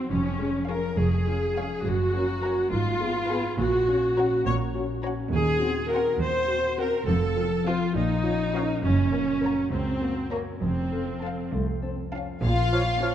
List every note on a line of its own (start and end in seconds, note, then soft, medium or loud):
0.00 0.13 D#3 soft
0.00 0.14 F#3 soft
0.00 0.13 F#4 soft
0.00 0.14 C5 soft
0.11 0.81 F1 medium
0.11 0.81 F2 medium
0.11 1.87 F2 soft
0.11 0.68 C#4 medium
0.38 1.55 G#3 soft
0.38 0.49 C#4 soft
0.38 0.49 G#4 soft
0.68 0.79 C#4 soft
0.68 1.26 F4 soft
0.68 0.79 G#4 soft
0.68 0.98 A#4 medium
0.68 0.90 C#5 soft
0.68 0.90 F5 soft
0.68 0.91 G#5 soft
0.98 1.68 F1 medium
0.98 1.68 F2 medium
0.98 1.85 G#4 medium
0.98 2.43 C#5 soft
1.27 1.37 C#4 soft
1.27 1.87 F4 soft
1.27 1.37 G#4 soft
1.55 1.87 G#3 soft
1.55 1.67 C#4 soft
1.55 1.67 G#4 soft
1.55 1.78 C#5 soft
1.55 1.78 F5 medium
1.55 1.77 G#5 medium
1.84 2.55 F#1 medium
1.84 2.75 F#2 medium
1.84 2.55 F#2 medium
1.84 2.73 F#4 medium
2.14 2.75 A#3 soft
2.14 2.24 C#4 soft
2.14 2.25 A#4 soft
2.43 2.53 C#4 soft
2.43 2.53 A#4 soft
2.43 2.75 A#4 soft
2.43 2.65 C#5 soft
2.43 2.75 C#5 soft
2.43 2.65 A#5 soft
2.43 2.65 A#5 medium
2.72 3.42 G#1 medium
2.72 3.62 G#2 medium
2.72 3.43 G#2 medium
2.72 3.58 F4 medium
3.01 3.12 B3 soft
3.01 3.62 B3 soft
3.01 3.12 G#4 soft
3.30 3.40 B3 soft
3.30 3.40 G#4 soft
3.30 3.62 G#4 soft
3.30 3.52 B4 medium
3.30 3.62 B4 soft
3.30 3.52 G#5 medium
3.30 3.52 B5 medium
3.59 4.29 A#1 medium
3.59 5.35 A#2 medium
3.59 4.29 A#2 medium
3.59 4.45 F#4 medium
3.87 3.98 C#4 medium
3.87 5.02 C#4 soft
3.87 3.99 F#4 medium
4.16 4.27 C#4 soft
4.16 4.73 F#4 soft
4.16 4.28 F#4 soft
4.16 4.38 C#5 medium
4.16 4.38 F#5 medium
4.16 4.39 A#5 medium
4.46 5.16 A#1 medium
4.46 5.15 A#2 medium
4.46 5.35 A#4 soft
4.46 4.54 C#5 medium
4.74 4.85 C#4 soft
4.74 5.89 F#4 soft
4.74 4.85 F#4 soft
5.02 5.13 C#4 soft
5.02 5.35 C#4 soft
5.02 5.13 F#4 soft
5.02 5.25 C#5 medium
5.02 5.25 F#5 medium
5.02 5.25 A#5 medium
5.32 6.03 D#2 medium
5.32 7.10 D#3 medium
5.32 5.87 G#4 medium
5.60 5.71 C4 medium
5.60 6.77 C4 soft
5.60 5.71 F#4 medium
5.90 6.01 C4 soft
5.90 6.01 F#4 soft
5.90 6.48 F#4 soft
5.90 6.20 A#4 medium
5.90 6.13 C5 medium
5.90 6.12 F#5 medium
5.90 6.13 F#5 medium
6.19 6.90 D#2 medium
6.19 6.77 C5 medium
6.19 7.65 C5 soft
6.47 6.58 C4 soft
6.47 6.58 F#4 soft
6.47 7.10 F#4 soft
6.76 6.87 C4 soft
6.76 7.98 C4 soft
6.76 6.87 F#4 soft
6.76 7.07 A#4 medium
6.76 7.01 C5 medium
6.76 7.00 F#5 medium
7.07 7.79 F1 medium
7.07 7.78 F2 medium
7.07 8.85 F3 medium
7.07 7.66 A4 medium
7.36 7.47 C4 soft
7.36 7.47 F4 medium
7.36 7.65 F4 soft
7.64 7.75 C4 soft
7.64 7.76 F4 soft
7.64 8.52 F4 soft
7.64 7.96 F4 medium
7.64 7.98 C5 soft
7.64 7.88 C5 medium
7.64 7.88 F5 medium
7.64 7.88 A5 medium
7.95 8.66 A#1 medium
7.95 8.85 A#2 medium
7.95 8.66 A#2 medium
7.95 8.81 D#4 medium
8.23 8.34 C#4 soft
8.23 9.11 C#4 soft
8.23 8.34 F4 soft
8.53 8.64 C#4 soft
8.53 8.64 F4 soft
8.53 8.85 F4 soft
8.53 9.71 A#4 soft
8.53 8.76 C#5 medium
8.53 8.76 F5 medium
8.53 8.75 A#5 medium
8.82 9.55 F#1 medium
8.82 10.64 F#2 medium
8.82 9.55 F#2 medium
8.82 9.70 C#4 medium
9.12 9.23 A#3 soft
9.12 10.31 C#4 soft
9.12 9.23 A#4 medium
9.42 9.53 A#3 soft
9.42 10.01 F#4 soft
9.42 9.53 A#4 soft
9.42 9.65 C#5 soft
9.42 9.65 A#5 soft
9.42 9.65 A#5 medium
9.72 10.44 C#2 medium
9.72 10.31 C4 medium
9.72 10.64 A#4 soft
10.02 10.12 A#3 soft
10.02 10.64 F#4 soft
10.02 10.13 A#4 soft
10.32 10.40 A#3 medium
10.32 10.43 A#3 soft
10.32 10.64 C#4 soft
10.32 10.43 A#4 soft
10.32 10.55 C#5 soft
10.32 10.54 A#5 soft
10.32 10.55 A#5 soft
10.62 11.35 F1 medium
10.62 12.45 F2 soft
10.62 11.35 F2 medium
10.62 11.51 C4 medium
10.91 11.02 C4 soft
10.91 12.11 F4 soft
10.91 11.02 A4 soft
11.22 11.33 C4 soft
11.22 11.33 A4 soft
11.22 11.81 A4 soft
11.22 11.46 F5 soft
11.22 11.45 A5 soft
11.52 12.25 C2 medium
11.52 11.66 A3 soft
11.52 12.45 C5 soft
11.82 11.97 C4 medium
11.82 12.45 A4 soft
12.12 12.26 C#4 soft
12.12 12.56 F4 soft
12.12 12.35 F5 soft
12.12 12.35 A5 soft
12.42 13.14 A#1 medium
12.42 13.14 A#2 medium
12.42 13.15 A#2 medium
12.42 13.15 F4 medium
12.42 13.15 F5 medium
12.58 13.15 F4 soft
12.72 12.83 F3 medium
12.72 12.83 F4 medium
12.72 13.01 C#5 medium
12.72 12.83 C#5 medium
12.72 12.78 F6 medium
12.87 13.15 F5 medium
13.02 13.12 F3 medium
13.02 13.15 C#4 medium
13.02 13.15 F4 medium
13.02 13.12 F4 medium
13.02 13.15 C#5 medium
13.02 13.13 C#5 soft
13.02 13.08 F6 medium